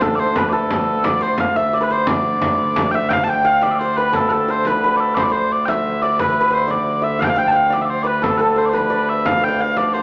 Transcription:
Already playing: D2 D3 C5 D5 E5
0.01 A4, frame drum
0.15 C5 D5
0.20 C5
0.36 B4, frame drum
0.49 A4 D5
0.70 frame drum
0.87 frame drum
1.04 D5, frame drum
1.21 C5, frame drum
1.38 F5, frame drum
1.56 E5
1.73 D5
1.81 B4
1.90 C5, frame drum
2.07 D5, frame drum
2.42 frame drum
2.59 frame drum
2.76 frame drum
2.91 E5 G5
3.09 F5 G5, frame drum
3.24 G5 A5
3.30 G5
3.45 F5
3.62 D5, frame drum
3.71 E5
3.75 D5
3.79 C5
3.97 B4
4.13 A4, frame drum
4.29 A4 B4
4.48 C5
4.65 B4, frame drum
4.77 C5
4.84 B4
4.97 A4 D5
5.15 C5 D5, frame drum
5.19 C5
5.24 D5
5.30 C5
5.52 D5
5.65 E5 G5, frame drum
6.02 D5
6.19 B4, frame drum
6.29 B4
6.41 B4
6.51 C5, frame drum
6.68 D5, frame drum
7.02 E5, frame drum
7.19 F5, frame drum
7.24 F5 G5
7.29 F5
7.36 G5
7.48 G5 A5
7.52 F5
7.70 D5, frame drum
7.81 D5 E5
7.90 C5
8.03 B4 D5
8.07 B4
8.22 A4, frame drum
8.37 A4 B4
8.56 C5
8.66 C5 D5
8.73 B4, frame drum
8.90 D5
9.09 E5
9.25 F5, frame drum
9.37 F5
9.44 G5
9.48 F5
9.60 F5
9.77 D5, frame drum
9.94 C5

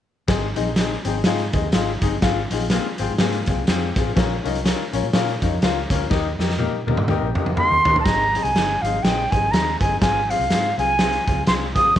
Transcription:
0.28 G#1 C4 D#4 G#4, kick, snare, closed hi-hat
0.56 A#1 C4 D#4 G#4, closed hi-hat
0.76 C4 D#4 G#4, snare, closed hi-hat
1.05 G#1 C4 D#4 G#4, closed hi-hat
1.24 G#2 C4 D#4 F4 G#4, snare, closed hi-hat
1.38 closed hi-hat
1.53 D#2 C4 D#4 G#4, kick, closed hi-hat
1.72 G#1 C4 D#4 F4 G#4, snare, closed hi-hat
2.02 G1 C4 D#4 G#4, kick, closed hi-hat
2.22 G#1 C4 F4 G#4, kick, snare, closed hi-hat
2.51 A#1 C4 D#4 F4 G#4, closed hi-hat
2.60 closed hi-hat
2.70 A#3 C4 F4 G#4, snare, closed hi-hat
2.98 G#1 C4 F4 G#4, closed hi-hat
3.10 G#2
3.18 G#2 A#3 C4 F4 G#4, snare, closed hi-hat
3.32 closed hi-hat
3.46 C2 C4 F4 G#4, kick, closed hi-hat
3.67 F2 C4 F4 G#4, snare, closed hi-hat
3.96 A1 C4 F4 G#4, kick, snare, closed hi-hat
4.16 A#1 C#4 F4 A#4, kick, snare, closed hi-hat
4.44 C2 C#4 D#4 F4 A#4, closed hi-hat
4.55 closed hi-hat
4.64 C#4 F4 A#4, snare, closed hi-hat
4.93 A#1 C#4 F4 A#4, closed hi-hat
5.03 A#2
5.13 A#2 C#4 F4 A#4, snare, closed hi-hat
5.28 closed hi-hat
5.42 F2 C#4 D#4 F4 A#4, kick, closed hi-hat
5.62 C#2 C#4 F4 A#4, snare, closed hi-hat
5.90 D2 C#4 F4 A#4, kick, snare, closed hi-hat
6.10 D#2 D#4 G4 A#4, kick, snare
6.39 F2 D#4 G4 A#4, snare
6.50 snare
6.58 A#3 D#4 G4 A#4, high tom
6.87 D#2 A#3 D#4 G4 A#4, high tom
6.97 G2, mid tom
7.07 D#2 C4 D#4 G4 A#4, mid tom
7.21 A#1
7.35 D#4 G4, mid tom
7.40 A#4
7.46 F2, mid tom
7.56 A#3 D#4 G4 A#4 C6, muted fingered electric bass stroke, mid tom
7.71 D#2
7.85 D#3 D#4 G4 A#4, floor tom
7.96 floor tom
8.00 A5 A#5
8.05 G#1 C4 D#4 G#4, kick, snare, closed hi-hat
8.35 C4 D#4 G#4, closed hi-hat
8.43 C2 G#5, closed hi-hat
8.54 G1 C4 D#4 G#4, snare, closed hi-hat
8.82 G#1 C4 D#4 F5, closed hi-hat
8.86 G#4
9.03 A#1 C4 D#4 G#4 G5, snare, closed hi-hat
9.31 G#1 C4 D#4 G#4 G#5, kick, closed hi-hat
9.51 D#2 C4 D#4 G#4 A#5, snare, closed hi-hat
9.80 G1 C4 D#4 G#4 G#5, kick, closed hi-hat
10.01 G#1 C4 F4 G#4 G#5, kick, snare, closed hi-hat
10.29 C4 F4 G#4 F5, closed hi-hat
10.39 C2, closed hi-hat
10.50 G#2 C4 F4 G#4, snare, closed hi-hat
10.77 C2 C4 F4 G#4 G#5, closed hi-hat
10.99 C4 F4 G#4, snare, closed hi-hat
11.13 closed hi-hat
11.27 C#2 C4 F4 G#4, kick, closed hi-hat
11.47 C2 C4 F4 G#4 C6, snare, closed hi-hat
11.75 A1 C4 F4 G#4 D#6, kick, closed hi-hat
11.96 C#4, closed hi-hat

